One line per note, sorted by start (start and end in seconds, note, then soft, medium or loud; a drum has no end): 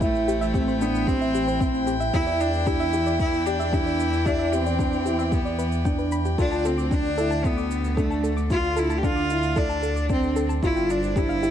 0.00 2.11 A1 medium
0.00 2.13 A3 medium
0.00 0.83 A3 loud
0.00 6.38 E4 medium
0.00 0.32 E4 loud
0.00 2.14 C5 medium
0.00 7.82 G5 loud
0.00 kick loud
0.00 shaker soft
0.15 shaker soft
0.28 0.36 G4 loud
0.28 shaker medium
0.41 0.46 E5 loud
0.41 shaker soft
0.54 0.70 C4 medium
0.54 0.59 G4 medium
0.54 kick loud
0.54 shaker soft
0.68 0.80 C5 medium
0.68 shaker soft
0.81 1.09 B3 loud
0.81 1.12 D4 medium
0.81 shaker medium
0.95 shaker soft
1.07 1.87 C4 loud
1.07 1.15 G4 loud
1.07 kick loud
1.07 shaker soft
1.21 1.26 E5 loud
1.21 shaker soft
1.34 1.39 G4 medium
1.34 shaker medium
1.48 1.59 C5 medium
1.48 shaker soft
1.60 1.91 C4 medium
1.60 kick loud
1.60 shaker soft
1.74 shaker soft
1.87 1.95 G4 loud
1.87 shaker medium
2.00 2.05 E5 loud
2.00 shaker soft
2.13 6.36 E2 medium
2.13 6.38 E3 medium
2.13 2.42 E4 loud
2.13 2.45 E4 loud
2.13 2.18 G4 medium
2.13 kick loud
2.13 shaker soft
2.27 2.39 D5 medium
2.27 shaker soft
2.31 7.60 D5 medium
2.40 2.68 D4 loud
2.40 shaker medium
2.53 shaker soft
2.66 2.82 D4 medium
2.66 3.19 E4 loud
2.66 2.75 G4 loud
2.66 kick loud
2.66 shaker soft
2.80 2.85 E5 loud
2.80 shaker soft
2.93 3.24 E4 medium
2.93 2.98 G4 medium
2.93 shaker medium
3.06 3.18 D5 medium
3.06 shaker soft
3.19 3.48 E4 loud
3.19 kick loud
3.19 shaker soft
3.33 shaker soft
3.46 3.75 D4 loud
3.46 3.54 G4 loud
3.46 shaker medium
3.60 3.64 E5 loud
3.60 shaker soft
3.73 4.04 D4 medium
3.73 4.28 E4 loud
3.73 3.77 G4 medium
3.73 kick loud
3.73 shaker soft
3.86 3.98 D5 medium
3.86 shaker soft
4.00 shaker medium
4.13 shaker soft
4.25 4.55 D4 loud
4.25 4.57 E4 loud
4.25 4.34 G4 loud
4.25 kick loud
4.25 shaker soft
4.39 4.44 E5 loud
4.39 shaker soft
4.53 5.35 C4 medium
4.53 4.57 G4 medium
4.53 shaker medium
4.66 4.78 D5 medium
4.66 shaker soft
4.79 4.94 D4 medium
4.79 kick loud
4.79 shaker soft
4.93 shaker soft
5.05 5.36 E4 medium
5.05 5.13 G4 medium
5.05 shaker medium
5.19 5.24 E5 loud
5.19 shaker soft
5.32 5.86 B3 medium
5.32 5.37 G4 medium
5.32 kick loud
5.32 shaker soft
5.45 5.57 D5 medium
5.45 shaker soft
5.58 5.67 B4 medium
5.58 shaker medium
5.72 shaker soft
5.85 6.16 D4 medium
5.85 5.93 G5 medium
5.85 kick medium
5.85 shaker soft
5.98 6.03 B4 medium
5.98 shaker soft
6.12 6.24 B5 loud
6.12 shaker medium
6.25 6.33 G4 medium
6.25 shaker soft
6.38 10.60 D2 medium
6.38 10.63 D3 medium
6.38 6.67 D4 medium
6.38 6.69 F4 medium
6.38 6.46 A4 medium
6.38 kick loud
6.38 shaker soft
6.51 6.56 A5 loud
6.51 shaker soft
6.65 6.95 C4 medium
6.65 6.70 A4 medium
6.65 shaker medium
6.74 11.51 D4 medium
6.74 6.90 D6 medium
6.78 shaker soft
6.91 7.07 D4 medium
6.91 7.47 D4 loud
6.91 kick loud
6.91 shaker soft
7.05 shaker soft
7.17 7.49 E4 medium
7.17 7.26 A4 medium
7.17 shaker medium
7.31 7.36 A5 loud
7.31 shaker soft
7.44 8.00 B3 loud
7.44 7.49 A4 medium
7.44 kick loud
7.44 shaker soft
7.48 11.51 A4 medium
7.57 7.69 D6 medium
7.57 shaker soft
7.71 shaker medium
7.84 shaker soft
7.97 8.38 A3 medium
7.97 8.29 D4 medium
7.97 8.05 A4 loud
7.97 kick loud
7.97 shaker soft
8.10 8.15 A5 loud
8.10 shaker soft
8.23 8.29 A4 medium
8.23 shaker medium
8.37 8.49 D6 medium
8.37 shaker soft
8.50 8.82 F4 medium
8.50 8.80 F4 loud
8.50 kick loud
8.50 shaker soft
8.64 shaker soft
8.76 8.99 E4 loud
8.76 8.85 A4 loud
8.76 shaker medium
8.90 8.95 A5 loud
8.90 shaker soft
8.98 9.06 G4 medium
9.03 9.19 D4 medium
9.03 9.59 F4 loud
9.03 9.08 A4 medium
9.03 kick loud
9.03 shaker soft
9.16 9.28 D6 medium
9.16 shaker soft
9.30 9.61 E4 medium
9.30 shaker medium
9.43 shaker soft
9.56 10.10 D4 loud
9.56 9.64 A4 loud
9.56 kick loud
9.56 shaker soft
9.69 9.74 A5 loud
9.69 shaker soft
9.82 9.88 A4 medium
9.82 shaker medium
9.96 10.08 D6 medium
9.96 shaker soft
10.09 10.48 C4 loud
10.09 10.41 D4 medium
10.09 kick loud
10.09 shaker soft
10.23 shaker soft
10.36 10.44 A4 loud
10.36 shaker medium
10.49 10.54 A5 loud
10.49 shaker soft
10.62 11.51 G1 medium
10.62 11.51 G3 medium
10.62 10.92 E4 loud
10.62 10.94 F4 loud
10.62 10.67 G4 medium
10.62 kick loud
10.62 shaker soft
10.76 10.88 G5 medium
10.76 shaker soft
10.90 11.19 D4 loud
10.90 shaker medium
10.95 11.51 C5 medium
11.03 shaker soft
11.16 11.32 D4 medium
11.16 11.51 E4 loud
11.16 11.24 G4 loud
11.16 kick loud
11.16 shaker soft
11.29 11.34 F5 loud
11.29 shaker soft
11.42 11.51 E4 medium
11.42 11.47 G4 medium
11.42 shaker medium